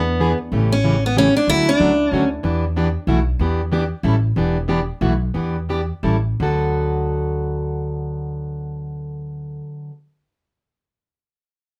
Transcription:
Already playing: E2 B3
0.20 E3 B3 D4 G#4
0.52 A1 C#3 E3 A3 C#4 G4
0.72 C#4
0.84 C#3 E3 A3 C#4 G4
1.06 B3
1.16 C#3 E3 A3 C#4 G4
1.37 D4
1.48 D2 D3 F#3 A3 C#4 E4 F#4
1.69 D4
1.80 C#2 D3 F#3 A3 C#4 F#4
2.11 D2 D3 F#3 A3 C#4 F#4
2.43 E2 E3 B3 D4 G4
2.76 E3 B3 D4 G4
3.07 B1 B2 E3 A3 E4 F#4
3.39 E2 E3 B3 D4 G4
3.72 E3 B3 D4 G4
4.03 A1 E3 G3 C#4 E4 A4
4.36 E1 E3 B3 D4 G4
4.68 E3 B3 D4 G4
5.01 B1 B2 E3 A3 E4 F#4
5.34 E2 E3 B3 D4 G4
5.69 E3 B3 D4 G4
6.03 A1 E3 G3 C#4 E4 A4
6.40 D2 D3 F#3 B3 F#4 A4

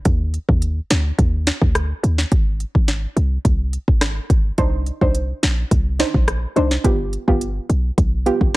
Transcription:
0.05 D#2, kick, closed hi-hat
0.34 closed hi-hat
0.49 D#2, kick
0.62 closed hi-hat
0.90 D2, snare, closed hi-hat
1.18 D#2, kick, closed hi-hat
1.47 snare, closed hi-hat
1.62 D2, kick
1.75 cross-stick, closed hi-hat
2.03 D#2, closed hi-hat
2.18 snare
2.32 G#1, kick, closed hi-hat
2.60 closed hi-hat
2.75 G#1, kick
2.88 snare, closed hi-hat
3.16 C2, closed hi-hat
3.45 C2, kick, closed hi-hat
3.73 closed hi-hat
3.88 G#1, kick
4.01 cross-stick, snare, closed hi-hat
4.30 G#1, kick, closed hi-hat
4.58 C2 D4 D#4 C5, kick, closed hi-hat
4.86 closed hi-hat
5.01 C2 D4 D#4 C5, kick
5.15 closed hi-hat
5.43 A#1, snare, closed hi-hat
5.71 C2, kick, closed hi-hat
5.99 D4 D#4 C5, snare, closed hi-hat
6.14 A#1, kick
6.28 cross-stick, closed hi-hat
6.56 C2 D4 D#4 C5, closed hi-hat
6.71 snare
6.84 G1 B3 F4 G4, kick, closed hi-hat
7.13 closed hi-hat
7.28 G1 B3 F4 G4, kick
7.41 closed hi-hat
7.69 B1, closed hi-hat
7.98 B1, kick, closed hi-hat
8.26 B3 F4 G4, closed hi-hat
8.41 G1, kick

